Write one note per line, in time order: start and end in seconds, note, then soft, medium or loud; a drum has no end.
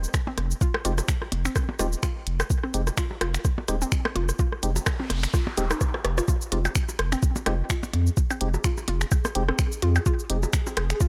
0.04 cabasa soft
0.14 finger snap medium
0.14 kick loud
0.14 cross-stick soft
0.14 cabasa soft
0.27 0.32 C4 medium
0.27 percussion blips medium
0.38 0.54 F1 loud
0.38 cross-stick soft
0.38 closed hi-hat medium
0.38 percussion blips medium
0.51 cabasa soft
0.61 0.65 F4 medium
0.61 kick loud
0.61 cabasa medium
0.74 cross-stick medium
0.74 percussion blips medium
0.85 1.01 F1 loud
0.85 0.92 G#3 medium
0.85 0.92 C4 medium
0.85 0.92 D#4 medium
0.85 0.89 F4 medium
0.85 0.92 G4 medium
0.85 closed hi-hat medium
0.85 cabasa soft
0.98 cross-stick soft
0.98 closed hi-hat soft
0.98 percussion blips medium
0.98 cabasa soft
1.08 finger snap medium
1.08 kick loud
1.08 cabasa medium
1.22 cross-stick soft
1.22 percussion blips medium
1.32 1.48 F1 medium
1.32 closed hi-hat medium
1.32 percussion blips medium
1.45 1.50 C4 medium
1.45 finger snap medium
1.45 closed hi-hat soft
1.45 cabasa soft
1.56 kick loud
1.56 cross-stick medium
1.56 cabasa soft
1.56 percussion blips medium
1.69 percussion blips soft
1.69 percussion blips medium
1.79 1.95 D#1 medium
1.79 1.87 G#3 medium
1.79 1.87 C4 medium
1.79 1.87 D#4 medium
1.79 1.83 F4 medium
1.79 1.87 G4 loud
1.79 cross-stick soft
1.79 closed hi-hat medium
1.79 cabasa soft
1.93 cabasa soft
2.03 2.07 F4 medium
2.03 finger snap medium
2.03 kick loud
2.03 cross-stick soft
2.03 cabasa medium
2.27 2.43 F1 loud
2.27 closed hi-hat medium
2.40 cross-stick medium
2.40 cabasa soft
2.40 percussion blips medium
2.50 kick loud
2.50 cabasa medium
2.63 2.68 C4 medium
2.63 cross-stick soft
2.74 2.90 F1 loud
2.74 2.81 G#3 medium
2.74 2.81 C4 medium
2.74 2.81 D#4 medium
2.74 2.81 G4 medium
2.74 closed hi-hat medium
2.74 cabasa soft
2.87 cross-stick soft
2.87 closed hi-hat soft
2.87 percussion blips medium
2.87 cabasa soft
2.97 3.01 F4 medium
2.97 finger snap medium
2.97 kick loud
2.97 cabasa medium
3.11 percussion blips medium
3.21 3.37 F1 medium
3.21 3.25 F4 medium
3.21 cross-stick medium
3.21 closed hi-hat medium
3.21 percussion blips medium
3.34 finger snap medium
3.34 closed hi-hat soft
3.34 cabasa soft
3.45 kick loud
3.45 cross-stick soft
3.45 cabasa medium
3.58 percussion blips soft
3.58 percussion blips medium
3.68 3.84 D#1 medium
3.68 3.76 G#3 medium
3.68 3.76 C4 medium
3.68 3.76 D#4 medium
3.68 3.76 G4 loud
3.68 cross-stick soft
3.68 closed hi-hat medium
3.68 cabasa soft
3.82 3.86 C4 medium
3.82 cabasa soft
3.92 finger snap medium
3.92 kick loud
3.92 cabasa medium
4.05 cross-stick medium
4.05 percussion blips medium
4.16 4.32 F1 loud
4.16 4.20 F4 medium
4.16 closed hi-hat medium
4.16 percussion blips medium
4.29 cross-stick soft
4.29 cabasa soft
4.39 4.43 F4 medium
4.39 kick loud
4.39 noise sweep medium
4.39 cabasa medium
4.52 cross-stick soft
4.63 4.79 F1 loud
4.63 4.70 G#3 medium
4.63 4.70 C4 medium
4.63 4.70 D#4 medium
4.63 4.70 G4 medium
4.63 closed hi-hat medium
4.63 cabasa soft
4.76 closed hi-hat soft
4.76 percussion blips medium
4.76 cabasa soft
4.86 finger snap medium
4.86 kick loud
4.86 cross-stick medium
4.86 cabasa medium
4.86 percussion blips medium
5.00 5.04 C4 medium
5.00 percussion blips medium
5.10 5.26 F1 medium
5.10 cross-stick soft
5.10 closed hi-hat medium
5.10 percussion blips medium
5.23 finger snap medium
5.23 closed hi-hat soft
5.23 cabasa soft
5.34 5.38 F4 medium
5.34 kick loud
5.34 cross-stick soft
5.34 cabasa medium
5.47 percussion blips medium
5.57 5.73 D#1 medium
5.57 5.65 G#3 loud
5.57 5.65 C4 medium
5.57 5.65 D#4 medium
5.57 5.65 G4 loud
5.57 5.61 G4 medium
5.57 closed hi-hat medium
5.57 cabasa medium
5.71 5.74 D#4 medium
5.71 cross-stick medium
5.71 cabasa soft
5.71 percussion blips medium
5.81 kick loud
5.81 cross-stick medium
5.81 cabasa medium
5.94 cross-stick medium
5.94 cross-stick soft
5.94 percussion blips medium
6.05 6.21 F1 loud
6.05 6.11 G4 medium
6.05 cross-stick medium
6.05 closed hi-hat medium
6.18 6.20 F4 medium
6.18 cross-stick soft
6.18 cross-stick medium
6.18 cabasa soft
6.28 6.32 F4 medium
6.28 11.08 G#4 medium
6.28 kick loud
6.28 cabasa medium
6.42 cabasa soft
6.52 6.68 F1 loud
6.52 6.59 G#3 medium
6.52 6.59 C4 medium
6.52 6.59 D#4 medium
6.52 6.56 F4 medium
6.52 6.59 G4 medium
6.52 closed hi-hat medium
6.65 percussion blips medium
6.65 cabasa soft
6.65 percussion blips medium
6.75 finger snap loud
6.75 kick loud
6.75 cabasa medium
6.89 percussion blips medium
6.89 cabasa soft
6.99 7.15 F1 medium
6.99 cross-stick medium
6.99 closed hi-hat medium
7.12 7.17 C4 medium
7.12 finger snap medium
7.12 closed hi-hat soft
7.12 cabasa soft
7.23 kick loud
7.23 cabasa medium
7.36 percussion blips medium
7.36 cabasa soft
7.46 7.62 F1 medium
7.46 7.54 G#3 loud
7.46 7.54 C4 medium
7.46 7.54 D#4 medium
7.46 7.50 F4 medium
7.46 7.54 G4 loud
7.46 cross-stick medium
7.46 closed hi-hat medium
7.46 percussion blips medium
7.70 7.74 F4 medium
7.70 finger snap medium
7.70 kick loud
7.70 cabasa medium
7.83 percussion blips loud
7.83 cabasa soft
7.94 8.10 F2 medium
7.94 closed hi-hat loud
7.94 percussion blips medium
8.07 cabasa soft
8.17 kick loud
8.17 cabasa medium
8.30 8.35 C4 medium
8.30 cabasa soft
8.30 percussion blips medium
8.41 8.57 F1 loud
8.41 8.48 G#3 medium
8.41 8.48 C4 medium
8.41 8.48 D#4 medium
8.41 8.48 G4 medium
8.41 closed hi-hat loud
8.54 percussion blips medium
8.54 cabasa soft
8.64 8.68 F4 medium
8.64 finger snap medium
8.64 kick loud
8.64 cabasa medium
8.78 percussion blips medium
8.78 cabasa soft
8.88 9.04 F1 medium
8.88 8.92 F4 medium
8.88 closed hi-hat medium
8.88 percussion blips medium
9.01 finger snap medium
9.01 closed hi-hat soft
9.01 cabasa soft
9.11 kick loud
9.11 cabasa medium
9.11 percussion blips medium
9.25 cross-stick medium
9.25 percussion blips medium
9.25 cabasa soft
9.35 9.51 F1 medium
9.35 9.43 G#3 medium
9.35 9.43 C4 medium
9.35 9.43 D#4 medium
9.35 9.43 G4 loud
9.35 closed hi-hat loud
9.49 9.53 C4 medium
9.49 cross-stick medium
9.59 finger snap loud
9.59 kick loud
9.59 cabasa medium
9.72 cabasa soft
9.82 9.99 F2 medium
9.82 9.86 F4 medium
9.82 closed hi-hat loud
9.96 cabasa soft
9.96 percussion blips medium
10.06 10.10 F4 medium
10.06 kick loud
10.06 cabasa medium
10.19 cabasa soft
10.30 10.46 F1 loud
10.30 10.37 G#3 medium
10.30 10.37 C4 medium
10.30 10.37 D#4 medium
10.30 10.37 G4 medium
10.30 closed hi-hat loud
10.43 percussion blips medium
10.43 cabasa soft
10.53 finger snap loud
10.53 kick loud
10.53 cabasa medium
10.67 10.71 C4 medium
10.67 percussion blips medium
10.67 cabasa soft
10.77 10.93 F1 medium
10.77 cross-stick medium
10.77 closed hi-hat loud
10.77 percussion blips medium
10.90 finger snap medium
10.90 closed hi-hat soft
10.90 cabasa soft
11.01 11.05 F4 medium
11.01 kick loud
11.01 cabasa medium